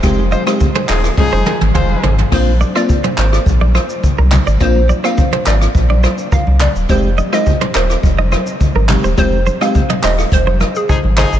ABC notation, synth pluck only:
X:1
M:4/4
L:1/16
Q:1/4=105
K:Bbmix
V:1 name="Synth pluck"
z16 | c2 z d2 z c2 z8 | c2 z f2 z d2 z4 f z d z | c2 z e2 z c2 z8 |
c2 z f2 z e2 c z2 A z4 |]